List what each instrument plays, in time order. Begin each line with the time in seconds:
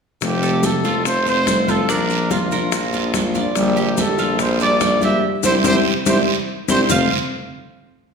0.21 tuba F1, nylon-string guitar C3 F3 A3 C4 F4, trumpet G4, high bongo, high conga, long guiro, maracas
0.43 cuban tres A4, high bongo, high conga, maracas
0.63 trumpet A4, high bongo, high conga, short guiro, maracas
0.73 tuba F1
0.84 tuba F1, nylon-string guitar F3 A3 C4 F4, cuban tres F4, high bongo, short guiro, maracas
1.05 trumpet C5, muted nylon-string guitar stroke, high bongo, high conga, long guiro, maracas
1.25 nylon-string guitar A3 C4 F4, cuban tres C5, trumpet C5, high conga, maracas
1.47 high bongo, low bongo, high conga, short guiro, maracas
1.68 nylon-string guitar F3 A3 C4 F4, cuban tres F4, trumpet A4, high bongo, high conga, short guiro, maracas
1.88 tuba A#1, nylon-string guitar F3 A#3 D4 F4, cuban tres D4, trumpet A#4, high bongo, high conga, long guiro, maracas
2.10 high bongo, high conga, maracas
2.31 cuban tres F4, trumpet F4, high bongo, high conga, short guiro, maracas
2.41 tuba A#1
2.51 tuba A#1, nylon-string guitar A#3 D4 F4, cuban tres A#4, high bongo, high conga, short guiro, maracas
2.72 muted nylon-string guitar stroke, high bongo, high conga, long guiro, maracas
2.92 nylon-string guitar A#3 D4 F4, cuban tres F4, high bongo, high conga, maracas
3.14 high bongo, low bongo, high conga, short guiro, maracas
3.35 nylon-string guitar A#3 D4 F4, cuban tres D5, short guiro, maracas
3.55 tuba A#1, nylon-string guitar D3 G3 D4 F4, trumpet G4, high bongo, high conga, long guiro, maracas
3.76 cuban tres G4, high bongo, high conga, maracas
3.97 trumpet A4, high bongo, high conga, short guiro, maracas
4.08 tuba A#1
4.18 tuba A#1, nylon-string guitar G3 D4 F4, cuban tres F4, high bongo, short guiro, maracas
4.38 trumpet C5, muted nylon-string guitar stroke, high bongo, high conga, long guiro, maracas
4.59 nylon-string guitar G3 D4 F4, cuban tres D5, trumpet D5, high conga, maracas
4.81 high bongo, low bongo, high conga, short guiro, maracas
5.01 nylon-string guitar G3 D4 F4, cuban tres G4, trumpet E5, high bongo, high conga, short guiro, maracas
5.43 tuba C2, nylon-string guitar C4 D4 E4, cuban tres E4 G4 C5, trumpet C5, low bongo, high conga, long guiro, maracas
5.64 tuba C2, nylon-string guitar C4 D4 E4, cuban tres E4 G4 C5, trumpet C5, low bongo, high conga, long guiro, maracas
6.06 tuba C2, nylon-string guitar C4 D4 E4, cuban tres E4 G4 C5, trumpet C5, low bongo, high conga, long guiro, maracas
6.68 tuba C2, nylon-string guitar C4 D4 E4, cuban tres E4 G4 C5, trumpet C5, low bongo, high conga, long guiro, maracas
6.89 tuba F1, nylon-string guitar F2 C3 F3 A3 C4 F4, cuban tres F4 C5 F5, trumpet F5, low bongo, low conga, long guiro, maracas